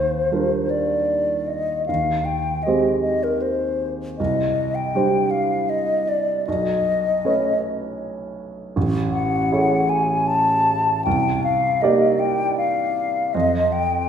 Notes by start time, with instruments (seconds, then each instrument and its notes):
Already playing: grand piano D#2, flute C5
0.32 grand piano G3 D4 F4 A#4
0.70 flute D5
1.48 flute D#5
1.86 grand piano D#2, flute F5
2.25 flute G5
2.63 grand piano G#3 C4, flute D#5
2.68 grand piano G4 C5
3.02 flute D#5
3.23 flute A#4
3.42 flute C5
4.18 grand piano C2, flute D#5
4.75 flute G5
4.95 grand piano G3 D4 G4 C5
5.31 flute F5
5.70 flute D#5
6.09 flute D5
6.47 grand piano B1, flute D#5
7.25 grand piano A3 C#4 B4 C#5
8.76 grand piano A1
9.12 flute F#5
9.51 grand piano A3 E4 G#4 C#5
9.89 flute G#5
10.27 flute A5
11.05 grand piano C2, flute G5
11.44 flute F5
11.82 grand piano A#3 D#4 G4 D5, flute D#5
12.20 flute G5
12.58 flute F5
13.34 grand piano F2, flute D#5
13.72 flute G5